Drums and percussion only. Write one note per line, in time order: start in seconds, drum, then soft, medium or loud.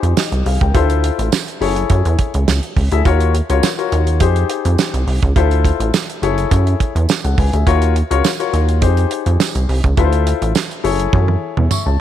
0.03 closed hi-hat soft
0.17 snare loud
0.17 tambourine medium
0.32 closed hi-hat medium
0.46 open hi-hat medium
0.61 kick medium
0.61 closed hi-hat medium
0.75 kick loud
0.75 closed hi-hat medium
0.90 closed hi-hat medium
1.04 closed hi-hat medium
1.19 closed hi-hat medium
1.32 snare loud
1.32 tambourine medium
1.48 closed hi-hat medium
1.62 open hi-hat medium
1.76 closed hi-hat soft
1.90 kick loud
1.90 closed hi-hat medium
2.05 closed hi-hat soft
2.19 kick loud
2.19 closed hi-hat medium
2.34 closed hi-hat soft
2.48 snare loud
2.48 tambourine medium
2.63 closed hi-hat soft
2.77 kick medium
2.77 open hi-hat medium
2.92 closed hi-hat medium
3.05 kick loud
3.05 closed hi-hat medium
3.20 closed hi-hat medium
3.35 closed hi-hat medium
3.50 closed hi-hat medium
3.63 snare loud
3.63 tambourine loud
3.79 closed hi-hat soft
3.92 closed hi-hat medium
4.07 closed hi-hat soft
4.20 kick loud
4.20 closed hi-hat loud
4.36 closed hi-hat soft
4.50 closed hi-hat medium
4.65 closed hi-hat medium
4.78 snare loud
4.78 tambourine medium
4.94 closed hi-hat medium
5.08 open hi-hat medium
5.22 kick medium
5.22 closed hi-hat medium
5.36 kick loud
5.36 closed hi-hat medium
5.51 closed hi-hat medium
5.65 kick medium
5.65 closed hi-hat medium
5.80 closed hi-hat medium
5.94 snare loud
5.94 tambourine loud
6.10 closed hi-hat medium
6.23 closed hi-hat medium
6.38 closed hi-hat medium
6.51 kick loud
6.51 closed hi-hat loud
6.67 closed hi-hat soft
6.80 kick loud
6.80 closed hi-hat medium
6.96 closed hi-hat soft
7.09 snare loud
7.09 tambourine medium
7.25 closed hi-hat medium
7.38 kick medium
7.38 open hi-hat medium
7.53 closed hi-hat medium
7.67 kick loud
7.67 closed hi-hat medium
7.82 closed hi-hat medium
7.96 closed hi-hat medium
8.11 closed hi-hat medium
8.24 snare loud
8.24 tambourine loud
8.40 closed hi-hat medium
8.54 closed hi-hat medium
8.69 closed hi-hat medium
8.82 kick loud
8.82 closed hi-hat loud
8.97 closed hi-hat soft
9.11 closed hi-hat medium
9.26 closed hi-hat soft
9.40 snare loud
9.40 tambourine medium
9.55 closed hi-hat medium
9.69 open hi-hat medium
9.84 kick medium
9.84 closed hi-hat medium
9.97 kick loud
9.97 closed hi-hat medium
10.13 closed hi-hat medium
10.27 closed hi-hat medium
10.42 closed hi-hat medium
10.55 snare loud
10.55 tambourine medium
10.71 closed hi-hat soft
10.85 open hi-hat medium
11.00 closed hi-hat medium
11.13 kick loud
11.13 high tom medium
11.28 high tom medium
11.57 mid tom medium
11.71 mid tom medium
11.71 tambourine medium